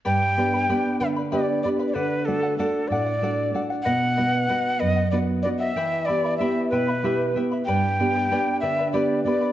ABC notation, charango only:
X:1
M:6/8
L:1/16
Q:3/8=63
K:G
V:1 name="Charango"
[GBdgb]2 [Bdgb] [Bdb] [GBdgb]2 [Bdgb] [Bdb] [GBdgb]2 [Bdgb] [Bdb] | [Adf]2 [Adf] [df] [Adf]2 [Adf] [df] [Adf]2 [Adf] [df] | [B^df]2 [Bdf] [df] [Bdf]2 [Bdf] [df] [Bf]2 [Bdf] [df] | [EGegb]2 [Eegb] [Eeb] [EGegb]2 [Eegb] [Eeb] [EGegb]2 [Eegb] [Eeb] |
[GBdgb]2 [Bdgb] [Bdb] [GBdgb]2 [Bdgb] [Bdb] [GBdgb]2 [Bdgb] [Bdb] |]